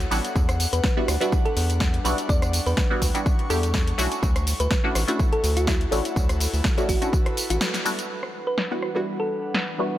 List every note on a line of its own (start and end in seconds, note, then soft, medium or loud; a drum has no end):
0.00 0.32 E4 medium
0.00 0.41 F#4 medium
0.00 0.32 A4 medium
0.00 0.32 C#5 medium
0.00 4.19 F#5 medium
0.00 closed hi-hat medium
0.00 tambourine soft
0.11 0.20 A1 medium
0.11 0.94 G3 medium
0.11 0.94 B3 medium
0.11 0.94 D4 medium
0.11 0.94 E4 medium
0.11 0.94 F#4 loud
0.11 open hi-hat loud
0.11 tambourine medium
0.25 closed hi-hat medium
0.25 tambourine soft
0.36 0.66 E2 loud
0.36 4.19 G3 medium
0.36 4.19 D4 medium
0.36 2.27 B4 medium
0.36 kick loud
0.36 tambourine soft
0.49 cross-stick medium
0.49 closed hi-hat medium
0.49 tambourine soft
0.60 open hi-hat loud
0.60 tambourine medium
0.73 0.81 E2 medium
0.73 0.86 B4 medium
0.73 closed hi-hat medium
0.73 tambourine soft
0.84 kick loud
0.84 snare loud
0.84 tambourine soft
0.97 1.15 G3 medium
0.97 1.15 B3 medium
0.97 1.15 D4 medium
0.97 1.15 E4 medium
0.97 1.15 F#4 loud
1.08 1.17 D2 loud
1.08 cross-stick medium
1.08 open hi-hat loud
1.08 tambourine medium
1.21 2.02 G3 loud
1.21 2.02 B3 medium
1.21 2.02 D4 medium
1.21 2.03 E4 medium
1.21 2.03 F#4 loud
1.21 closed hi-hat medium
1.21 tambourine soft
1.32 kick loud
1.32 tambourine soft
1.45 1.94 A4 medium
1.45 closed hi-hat soft
1.57 2.00 E2 loud
1.57 open hi-hat loud
1.57 tambourine medium
1.70 closed hi-hat medium
1.70 tambourine soft
1.80 kick loud
1.80 snare loud
1.80 tambourine soft
1.94 closed hi-hat medium
2.04 2.14 B1 medium
2.04 2.87 G3 medium
2.04 2.87 B3 medium
2.04 2.88 D4 medium
2.04 2.88 E4 medium
2.04 2.88 F#4 loud
2.04 open hi-hat loud
2.04 tambourine medium
2.18 closed hi-hat medium
2.18 tambourine soft
2.29 2.60 E2 loud
2.29 2.64 D5 medium
2.29 6.12 C#6 medium
2.29 kick loud
2.29 tambourine soft
2.42 cross-stick medium
2.42 closed hi-hat medium
2.42 tambourine soft
2.53 open hi-hat loud
2.53 tambourine medium
2.66 2.74 E2 loud
2.66 3.34 B4 medium
2.66 open hi-hat medium
2.66 tambourine soft
2.77 kick loud
2.77 snare loud
2.77 tambourine soft
2.90 3.12 G3 medium
2.90 3.12 B3 medium
2.90 3.12 D4 medium
2.90 3.12 E4 medium
2.90 3.12 F#4 loud
3.02 3.11 D2 loud
3.02 kick medium
3.02 open hi-hat loud
3.02 tambourine medium
3.14 3.47 G3 medium
3.14 3.47 B3 medium
3.14 3.47 D4 medium
3.14 3.48 E4 medium
3.14 3.48 F#4 medium
3.14 closed hi-hat medium
3.14 tambourine soft
3.26 kick loud
3.26 tambourine soft
3.39 closed hi-hat soft
3.50 3.93 E2 loud
3.50 3.96 G3 medium
3.50 3.96 B3 medium
3.50 3.96 D4 medium
3.50 3.96 E4 medium
3.50 3.96 G4 medium
3.50 3.87 A4 medium
3.50 open hi-hat loud
3.50 tambourine medium
3.63 closed hi-hat medium
3.63 tambourine soft
3.74 kick loud
3.74 snare loud
3.74 tambourine soft
3.87 closed hi-hat medium
3.98 4.08 B1 medium
3.98 4.81 A3 medium
3.98 4.81 C#4 medium
3.98 4.81 D4 medium
3.98 4.81 E4 medium
3.98 4.81 F#4 loud
3.98 open hi-hat loud
3.98 tambourine medium
4.12 closed hi-hat medium
4.12 tambourine soft
4.23 4.54 D2 loud
4.23 8.06 E4 medium
4.23 8.06 F#4 medium
4.23 8.06 A4 medium
4.23 kick loud
4.23 tambourine soft
4.36 cross-stick medium
4.36 closed hi-hat medium
4.36 tambourine soft
4.47 open hi-hat loud
4.47 tambourine medium
4.60 4.68 D2 medium
4.60 4.73 B4 medium
4.60 closed hi-hat medium
4.60 tambourine soft
4.71 kick loud
4.71 snare loud
4.71 tambourine soft
4.84 5.02 A3 loud
4.84 5.02 C#4 medium
4.84 5.02 D4 medium
4.84 5.02 E4 medium
4.84 5.02 F#4 loud
4.95 5.04 A1 loud
4.95 cross-stick medium
4.95 open hi-hat loud
4.95 tambourine medium
5.08 5.89 A3 loud
5.08 5.89 C#4 medium
5.08 5.89 D4 medium
5.08 5.90 E4 medium
5.08 5.90 F#4 loud
5.08 closed hi-hat medium
5.08 tambourine soft
5.19 kick loud
5.19 tambourine soft
5.33 5.81 A4 medium
5.33 closed hi-hat soft
5.44 5.87 D2 loud
5.44 open hi-hat loud
5.44 tambourine medium
5.57 5.66 F#4 loud
5.57 closed hi-hat medium
5.57 tambourine soft
5.67 5.83 E4 medium
5.67 kick loud
5.67 snare loud
5.67 tambourine soft
5.81 closed hi-hat medium
5.91 6.01 A1 loud
5.91 6.74 A3 medium
5.91 6.74 C#4 medium
5.91 6.75 D4 medium
5.91 6.75 E4 medium
5.91 6.75 F#4 loud
5.91 open hi-hat loud
5.91 tambourine medium
6.05 closed hi-hat medium
6.05 tambourine soft
6.16 6.47 D2 loud
6.16 8.08 B4 medium
6.16 kick loud
6.16 tambourine soft
6.29 cross-stick medium
6.29 closed hi-hat medium
6.29 tambourine soft
6.40 open hi-hat loud
6.40 tambourine medium
6.54 6.61 D2 loud
6.54 open hi-hat medium
6.54 tambourine soft
6.64 kick loud
6.64 snare loud
6.64 tambourine soft
6.77 6.99 A3 medium
6.77 6.99 C#4 medium
6.77 6.99 D4 medium
6.77 6.99 E4 medium
6.77 6.99 F#4 loud
6.77 closed hi-hat soft
6.77 tambourine soft
6.89 6.98 A1 loud
6.89 7.04 F#4 medium
6.89 kick medium
6.89 open hi-hat loud
6.89 tambourine medium
7.02 7.34 A3 medium
7.02 7.34 C#4 medium
7.02 7.35 D4 medium
7.02 7.35 E4 medium
7.02 7.35 F#4 medium
7.02 closed hi-hat medium
7.02 tambourine soft
7.13 kick loud
7.13 tambourine soft
7.26 cross-stick medium
7.26 closed hi-hat soft
7.37 open hi-hat loud
7.37 tambourine medium
7.50 7.58 A1 medium
7.50 8.10 F#4 medium
7.50 closed hi-hat medium
7.50 tambourine soft
7.61 snare loud
7.61 tambourine soft
7.74 snare soft
7.74 closed hi-hat medium
7.74 tambourine soft
7.85 8.34 G3 medium
7.85 8.34 B3 medium
7.85 8.34 D4 medium
7.85 8.34 E4 medium
7.85 8.34 F#4 loud
7.85 open hi-hat loud
7.85 tambourine medium
7.99 closed hi-hat medium
7.99 tambourine soft
8.10 9.98 E3 medium
8.10 9.98 G3 medium
8.10 9.98 D4 medium
8.10 9.98 B4 medium
8.10 9.98 F#5 medium
8.23 cross-stick medium
8.47 8.60 B4 medium
8.58 snare loud
8.71 8.89 G3 medium
8.71 8.89 B3 medium
8.71 8.89 D4 medium
8.71 8.89 E4 medium
8.71 8.89 F#4 loud
8.82 cross-stick medium
8.95 9.76 G3 medium
8.95 9.76 B3 medium
8.95 9.77 D4 medium
8.95 9.77 E4 medium
8.95 9.77 F#4 loud
9.20 9.68 A4 medium
9.54 snare loud
9.78 9.98 G3 medium
9.78 9.98 B3 medium
9.78 9.98 D4 medium
9.78 9.98 E4 medium
9.78 9.98 F#4 medium